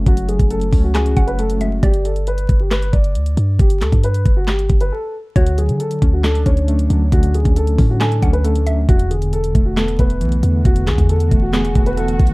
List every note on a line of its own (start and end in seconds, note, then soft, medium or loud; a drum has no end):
0.00 0.07 F#3 medium
0.00 1.61 G#3 medium
0.00 0.73 A3 medium
0.00 0.73 C#4 medium
0.00 0.29 F#4 medium
0.06 0.38 F#1 loud
0.06 1.17 F#3 medium
0.06 0.28 F#4 medium
0.06 kick loud
0.06 closed hi-hat medium
0.17 closed hi-hat medium
0.28 0.49 G#4 medium
0.28 closed hi-hat medium
0.39 0.71 F#1 loud
0.39 kick loud
0.39 closed hi-hat medium
0.50 0.82 A4 medium
0.50 closed hi-hat medium
0.61 closed hi-hat medium
0.73 1.15 C#2 loud
0.73 1.15 C#4 medium
0.73 kick loud
0.73 open hi-hat medium
0.84 0.94 F#4 medium
0.94 1.83 F#4 loud
0.94 1.26 G#4 medium
0.94 1.16 G#5 medium
0.94 snare loud
0.94 clap loud
0.94 closed hi-hat medium
1.06 closed hi-hat medium
1.16 1.80 F#1 loud
1.16 1.83 C#4 medium
1.16 1.58 F#5 medium
1.16 kick medium
1.16 closed hi-hat medium
1.27 1.38 B4 medium
1.27 closed hi-hat soft
1.39 1.83 A3 medium
1.39 1.60 A4 medium
1.39 closed hi-hat medium
1.50 closed hi-hat medium
1.61 1.83 G#3 medium
1.61 1.82 E5 medium
1.61 closed hi-hat medium
1.83 2.46 G1 loud
1.83 2.04 G4 loud
1.83 2.67 D5 loud
1.83 kick loud
1.83 closed hi-hat medium
1.94 closed hi-hat medium
2.05 2.26 A4 medium
2.05 closed hi-hat medium
2.16 closed hi-hat medium
2.27 2.58 B4 medium
2.27 closed hi-hat medium
2.38 closed hi-hat medium
2.49 2.91 G1 loud
2.49 kick loud
2.49 closed hi-hat medium
2.60 2.71 G4 medium
2.71 2.92 B4 medium
2.71 snare loud
2.71 clap medium
2.71 closed hi-hat medium
2.82 closed hi-hat medium
2.93 3.17 G1 loud
2.93 3.55 D5 medium
2.93 kick medium
2.93 closed hi-hat medium
3.04 closed hi-hat soft
3.15 3.36 D2 loud
3.15 closed hi-hat medium
3.26 closed hi-hat medium
3.37 3.58 G2 loud
3.37 closed hi-hat medium
3.59 3.83 G1 loud
3.59 3.80 G4 medium
3.59 kick loud
3.59 closed hi-hat medium
3.70 closed hi-hat medium
3.81 3.92 D2 loud
3.81 4.02 A4 medium
3.81 snare loud
3.81 clap medium
3.81 closed hi-hat medium
3.92 4.24 G2 loud
3.92 kick loud
3.92 closed hi-hat medium
4.03 4.35 B4 medium
4.03 closed hi-hat medium
4.14 closed hi-hat medium
4.25 4.68 G1 loud
4.25 kick loud
4.25 closed hi-hat medium
4.37 4.47 F#4 medium
4.48 4.79 G4 medium
4.48 snare loud
4.48 clap loud
4.48 closed hi-hat medium
4.59 closed hi-hat medium
4.69 4.91 G1 loud
4.69 kick medium
4.69 closed hi-hat medium
4.81 4.91 B4 medium
4.81 closed hi-hat soft
4.92 5.13 A4 medium
5.36 5.70 D2 loud
5.36 6.46 D3 medium
5.36 5.57 F#4 loud
5.36 6.20 C#5 loud
5.36 kick loud
5.36 closed hi-hat medium
5.46 closed hi-hat medium
5.58 6.68 F#3 medium
5.58 5.79 G#4 medium
5.58 closed hi-hat medium
5.69 5.79 D3 loud
5.69 closed hi-hat medium
5.80 6.11 A4 medium
5.80 closed hi-hat medium
5.91 closed hi-hat medium
6.02 6.44 D2 loud
6.02 6.45 C#4 medium
6.02 kick loud
6.02 closed hi-hat medium
6.13 6.24 F#4 medium
6.24 7.34 D4 loud
6.24 6.45 A4 medium
6.24 snare loud
6.24 clap loud
6.24 closed hi-hat medium
6.35 closed hi-hat medium
6.46 6.88 D2 loud
6.46 7.56 C#4 medium
6.46 7.08 C#5 medium
6.46 kick medium
6.46 closed hi-hat medium
6.57 closed hi-hat soft
6.68 7.78 A3 medium
6.68 closed hi-hat medium
6.79 closed hi-hat medium
6.90 7.11 D2 loud
6.90 7.33 F#3 medium
6.90 closed hi-hat medium
7.12 7.44 D2 loud
7.12 8.22 D3 medium
7.12 7.33 F#4 loud
7.12 kick loud
7.12 closed hi-hat medium
7.23 closed hi-hat medium
7.34 8.45 F#3 medium
7.34 7.55 G#4 medium
7.34 closed hi-hat medium
7.45 7.77 D2 loud
7.45 kick loud
7.45 closed hi-hat medium
7.56 7.87 A4 medium
7.56 closed hi-hat medium
7.67 closed hi-hat medium
7.78 8.21 A2 loud
7.78 8.21 C#4 medium
7.78 kick loud
7.78 open hi-hat medium
7.90 8.00 F#4 medium
8.00 8.89 D4 medium
8.00 8.32 A4 medium
8.00 8.21 G#5 medium
8.00 snare loud
8.00 clap loud
8.00 closed hi-hat medium
8.12 closed hi-hat medium
8.22 8.86 D2 loud
8.22 8.89 C#4 medium
8.22 8.64 F#5 medium
8.22 kick medium
8.22 closed hi-hat medium
8.33 8.44 B4 medium
8.33 closed hi-hat soft
8.44 8.89 A3 medium
8.44 8.65 A4 medium
8.44 closed hi-hat medium
8.56 closed hi-hat medium
8.67 8.89 F#3 medium
8.67 8.88 E5 medium
8.67 closed hi-hat medium
8.89 9.52 E1 loud
8.89 9.99 E2 medium
8.89 9.10 F#4 loud
8.89 kick loud
8.89 closed hi-hat medium
8.89 swell medium
8.99 closed hi-hat medium
9.11 10.21 D3 medium
9.11 9.32 G#4 medium
9.11 closed hi-hat medium
9.22 closed hi-hat medium
9.33 9.64 A4 medium
9.33 closed hi-hat medium
9.44 closed hi-hat medium
9.55 9.97 E1 loud
9.55 9.98 A3 medium
9.55 kick loud
9.55 closed hi-hat medium
9.65 9.76 F#4 medium
9.77 10.87 B3 medium
9.77 9.98 A4 medium
9.77 snare loud
9.77 clap loud
9.77 closed hi-hat medium
9.88 closed hi-hat medium
9.99 10.23 E1 loud
9.99 11.09 A3 medium
9.99 10.62 B4 medium
9.99 kick medium
9.99 closed hi-hat medium
10.10 closed hi-hat soft
10.21 10.42 B1 loud
10.21 11.31 E3 loud
10.21 closed hi-hat medium
10.32 closed hi-hat medium
10.43 10.64 E2 loud
10.43 10.86 D3 medium
10.43 closed hi-hat medium
10.65 10.89 E1 loud
10.65 11.75 E2 medium
10.65 10.86 F#4 loud
10.65 kick loud
10.65 closed hi-hat medium
10.76 closed hi-hat medium
10.87 10.98 B1 loud
10.87 11.98 D3 medium
10.87 11.08 G#4 medium
10.87 snare loud
10.87 clap medium
10.87 closed hi-hat medium
10.98 11.30 E2 loud
10.98 kick medium
10.98 closed hi-hat medium
11.09 11.41 A4 medium
11.09 closed hi-hat medium
11.20 closed hi-hat medium
11.31 11.74 E1 loud
11.31 11.74 A3 medium
11.31 kick loud
11.31 closed hi-hat medium
11.42 11.53 F#4 medium
11.53 12.34 B3 loud
11.53 11.84 G#4 medium
11.53 snare loud
11.53 clap medium
11.53 closed hi-hat medium
11.65 closed hi-hat medium
11.75 12.18 E1 loud
11.75 12.34 A3 medium
11.75 kick medium
11.75 closed hi-hat medium
11.86 11.97 B4 medium
11.86 closed hi-hat soft
11.97 12.34 E3 medium
11.97 12.18 A4 medium
11.97 closed hi-hat medium
12.08 closed hi-hat medium
12.20 12.34 B1 loud
12.20 12.34 D3 medium
12.20 kick loud
12.20 closed hi-hat soft
12.27 closed hi-hat medium